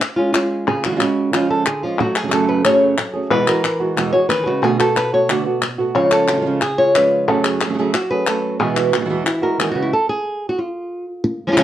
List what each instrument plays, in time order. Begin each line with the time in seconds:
0.01 muted nylon-string guitar stroke, clap
0.16 nylon-string guitar G#3 C#4 F4
0.33 nylon-string guitar G#3 C#4 F4, clap
0.67 nylon-string guitar C#3 G#4, muted nylon-string guitar stroke, clap
0.84 nylon-string guitar F3 G#3 C#4 F#4, clap
0.88 nylon-string guitar F3 G#3 C#4 F4
0.92 nylon-string guitar F3 G#3 C#4 F4
0.97 nylon-string guitar C#3 F4, clap
1.01 nylon-string guitar G#3 C#4
1.32 nylon-string guitar C#3 F3 G#3 C#4 F4, clap
1.50 nylon-string guitar A4
1.66 nylon-string guitar D3 G#4, muted nylon-string guitar stroke, clap
1.83 nylon-string guitar F3 G#3 C#4 F4
1.99 nylon-string guitar F#3 A3 F#4, muted nylon-string guitar stroke
2.16 nylon-string guitar G#4, clap
2.24 nylon-string guitar C#3 F#3 A3 C#4 G#4
2.28 nylon-string guitar C#3 F#3 A3 C#4 G#4, clap
2.33 nylon-string guitar F#2 C#3 F#3 A3 C#4 A4
2.49 nylon-string guitar B4
2.65 nylon-string guitar F#2 C#3 F#3 A3 C#4 G#4 C#5, clap
2.98 muted nylon-string guitar stroke, clap
3.14 nylon-string guitar F#3 A3 C#4 G#4
3.30 nylon-string guitar E2 B2 E3 G#3 B3 F#4 B4
3.47 nylon-string guitar E3 G#3 B3 F#4 A#4, clap
3.64 muted nylon-string guitar stroke, clap
3.80 nylon-string guitar E3 G#3 B3 F#4
3.97 nylon-string guitar E2 B2 E3 G#3 B3 F#4 G#4, clap
4.13 nylon-string guitar E3 G#3 B3 F#4 C#5
4.29 nylon-string guitar D#3 B4, muted nylon-string guitar stroke, clap
4.43 nylon-string guitar C#3 B3 F#4 G#4
4.48 nylon-string guitar E3 G#3
4.62 nylon-string guitar B2 D3 A3 B3 F#4 G#4
4.79 nylon-string guitar A3 B3 F#4 A4, clap
4.96 nylon-string guitar B4, muted nylon-string guitar stroke, clap
5.13 nylon-string guitar A3 B3 F#4 C#5
5.28 nylon-string guitar B2 D3 A3 B3 F#4 D5, clap
5.46 nylon-string guitar A3 B3 F#4
5.62 muted nylon-string guitar stroke, clap
5.78 nylon-string guitar A3 B3 F#4
5.95 nylon-string guitar C#3 F3 G#3 C#4 F4 C#5
6.11 nylon-string guitar A4, clap
6.28 nylon-string guitar F3 C#4 F4, clap
6.33 nylon-string guitar G#3 C#4 F4
6.37 nylon-string guitar F3 G#3 C#4 F4
6.41 nylon-string guitar F3 G#3 C#4 F4
6.46 nylon-string guitar C#3 F3 G#3 C#4 F4
6.61 nylon-string guitar G#4, muted nylon-string guitar stroke, clap
6.78 nylon-string guitar G#3 C#4 F4 C#5
6.95 nylon-string guitar F3 G#3 C#4 F4 B4, clap
7.28 nylon-string guitar F#2 C#3 F#3 A3 C#4 G#4 A4
7.45 nylon-string guitar G#4, clap
7.61 nylon-string guitar F#3 A3 C#4 G#4, clap
7.65 nylon-string guitar C#3 F#3 A3 C#4 G#4
7.69 nylon-string guitar C#3 F#3 A3 C#4 G#4
7.74 nylon-string guitar C#3 F#3 A3 C#4 G#4
7.78 nylon-string guitar F#2 C#3 F#3 A3 C#4 G#4
7.94 nylon-string guitar F#4, muted nylon-string guitar stroke, clap
8.11 nylon-string guitar F#3 A3 C#4 G#4 B4
8.27 nylon-string guitar F#3 A3 C#4 A4, clap
8.60 nylon-string guitar E2 B2 E3 G#3 B3 F#4 G#4
8.77 nylon-string guitar F#4, clap
8.92 nylon-string guitar B2 E3 G#3 B3 F#4, clap
8.97 nylon-string guitar B2 E3 G#3 B3 F#4
9.01 nylon-string guitar B2 B3 F#4
9.05 nylon-string guitar E2 E3 G#3 B3 F#4
9.10 nylon-string guitar B2 E3 G#3 B3 F#4
9.25 nylon-string guitar E4, muted nylon-string guitar stroke, clap
9.42 nylon-string guitar E3 G#3 B3 F#4 A#4
9.58 nylon-string guitar D#3 E3 G#3 B3 F#4 G#4, clap
9.71 nylon-string guitar C#3 B3 F#4
9.76 nylon-string guitar E3 G#3
9.82 nylon-string guitar E4
9.93 nylon-string guitar A4
10.09 nylon-string guitar G#4
10.49 nylon-string guitar F#4
10.59 nylon-string guitar F4
11.24 muted nylon-string guitar stroke
11.47 nylon-string guitar F3 G#3 C#4 F4
11.52 nylon-string guitar F3 G#3 C#4 F4
11.56 nylon-string guitar C#3 F3 G#3 C#4 F4, clap